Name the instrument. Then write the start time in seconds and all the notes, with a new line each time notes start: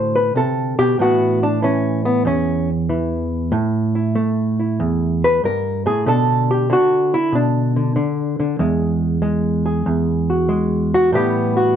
hollow-body jazz guitar
Already playing: A2 D3 F#4 C5
0.16 B4
0.36 C3 A4
0.79 B2 G4
0.99 A2 E3 B3 F#4
1.43 D4
1.62 E3 C#4
2.05 B3
2.25 E2 C#4
2.89 E3
3.52 A2
3.95 E4
4.15 A3
4.60 E4
4.80 E2
5.24 B4
5.44 G2 A#4
5.86 A2 G#4
6.06 B2 D3 D4 A4
6.51 G4
6.70 D3 F#4
7.14 E4
7.32 B2 D4
7.76 D3
7.96 D3
8.40 D3
8.59 E2 G#3
9.22 G#3
9.66 G#4
9.86 E2
10.30 F#4
10.49 G#3
10.94 F#4
11.12 A2 E3 G3 B3 G4
11.57 F#4